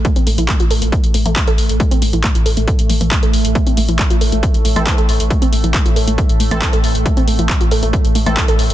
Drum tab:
HH |xxoxxxoxxxoxxxox|xxoxxxoxxxoxxxox|xxoxxxoxxxoxxxox|xxoxxxoxxxoxxxox|
CP |----x-------x---|----x-------x---|----x-------x---|----x-------x---|
T2 |---o-------o----|---o------oo----|---o-------o----|---o-------o----|
BD |o---o---o---o---|o---o---o---o---|o---o---o---o---|o---o---o---o---|

HH |xxoxxxoxxxoxxxox|
CP |----x-------x---|
T2 |---o-------o----|
BD |o---o---o---o---|